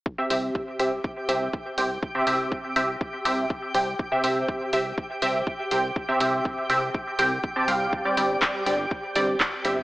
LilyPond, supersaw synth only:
\new Staff \with { instrumentName = "Supersaw synth" } { \time 4/4 \key c \major \tempo 4 = 122 r16 <c c' g' e''>16 <c c' g' e''>4 <c c' g' e''>16 r8. <c c' g' e''>8 r8 <c c' g' g''>16 r16 | r16 <c c' g' e''>16 <c c' g' e''>4 <c c' g' e''>16 r8. <c c' g' e''>8 r8 <c c' g' g''>16 r16 | r16 <c c' g' e''>16 <c c' g' e''>4 <c c' g' e''>16 r8. <c c' g' e''>8 r8 <c c' g' g''>16 r16 | r16 <c c' g' e''>16 <c c' g' e''>4 <c c' g' e''>16 r8. <c c' g' g''>16 r8 <c c' g' a''>16 <g c' g' f''>8~ |
<g c' g' f''>16 <g c' g' d''>16 <g c' g' d''>4 <g c' g' d''>16 r8. <g c' g' d''>8 r8 <g c' g' e''>16 r16 | }